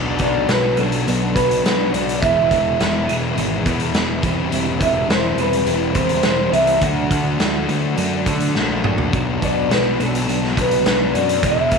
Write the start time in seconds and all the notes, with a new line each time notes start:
Already playing: B1 B2 F#3 B3 D4 F#4
0.19 B2 F#3 B3 D4 F#4 D5, kick, closed hi-hat
0.48 B1 B2 F#3 B3 D4 F#4, snare, closed hi-hat
0.52 B4
0.77 B1 B2 F#3 B3 D4 F#4 A4, closed hi-hat
0.92 closed hi-hat
1.06 B1 B2 F#3 B3 D4 F#4, closed hi-hat
1.35 B2 F#3 B3 D4 F#4 B4, kick, closed hi-hat
1.51 closed hi-hat
1.64 B1 B2 F#3 B3 D4 F#4 B4, snare, closed hi-hat
1.93 B1 B2 F#3 B3 D4 F#4 D5, closed hi-hat
2.09 closed hi-hat
2.22 E1 E2 B2 E3 G#3 B3 E4 E5, kick, closed hi-hat
2.51 E2 B2 E3 G#3 B3 E4, kick, closed hi-hat
2.80 E1 E2 B2 E3 G#3 B3 E4, snare, closed hi-hat
3.08 E1 E2 B2 E3 G#3 B3 E4, closed hi-hat
3.36 G#1 E2 B2 E3 G#3 B3 E4, closed hi-hat
3.64 E2 B2 E3 G#3 B3 E4, kick, closed hi-hat
3.80 closed hi-hat
3.93 E1 E2 B2 E3 G#3 B3 E4, snare, closed hi-hat
4.23 E1 E3 G3 C4 E4, kick, closed hi-hat
4.52 E1 E3 G3 C4 E4, closed hi-hat
4.80 E3 G3 C4 E4 E5, kick, closed hi-hat
5.08 E1 E3 G3 C4 E4 C5, snare, closed hi-hat
5.36 E1 E3 G3 C4 E4, closed hi-hat
5.41 B4
5.53 closed hi-hat
5.65 E1 E3 G3 C4 E4, closed hi-hat
5.95 E3 G3 C4 E4 C5, kick, closed hi-hat
6.09 closed hi-hat
6.22 E1 E3 G3 C4 E4 C5, snare, closed hi-hat
6.52 C2 E3 G3 C4 E4 E5, closed hi-hat
6.67 closed hi-hat
6.80 D2 D3 F#3 A3 D4 F#4 F#5, kick, closed hi-hat
7.10 D3 F#3 A3 D4 F#4, kick, closed hi-hat
7.38 D2 D3 F#3 A3 D4 F#4, snare, closed hi-hat
7.68 D2 D3 F#3 A3 D4 F#4, closed hi-hat
7.96 F#2 D3 F#3 A3 D4 F#4, closed hi-hat
8.26 D3 F#3 A3 D4 F#4, kick, closed hi-hat
8.40 closed hi-hat
8.55 A#1 D3 F#3 A3 D4 F#4, snare
8.84 D3 F#3 A3 D4 F#4, mid tom
8.98 floor tom
9.12 B1 B2 F#3 B3 D4 F#4, kick, closed hi-hat
9.41 B2 F#3 B3 D4 F#4, kick, closed hi-hat
9.45 D5
9.69 B1 B2 F#3 B3 D4 F#4, snare, closed hi-hat
9.74 B4
9.98 B1 B2 F#3 B3 D4 F#4, closed hi-hat
10.03 A4
10.15 closed hi-hat
10.27 B1 B2 F#3 B3 D4 F#4, closed hi-hat
10.45 snare
10.54 B2 F#3 B3 D4 F#4, kick
10.58 B4, closed hi-hat
10.71 closed hi-hat
10.84 B1 B2 F#3 B3 D4 F#4 B4, snare, closed hi-hat
11.11 F#2 B2 F#3 B3 D4 F#4 D5, closed hi-hat
11.29 closed hi-hat
11.40 E1 E2 B2 E3 G#3 B3 E4, kick, closed hi-hat
11.45 E5
11.71 E2 B2 E3 G#3 B3 E4, kick, closed hi-hat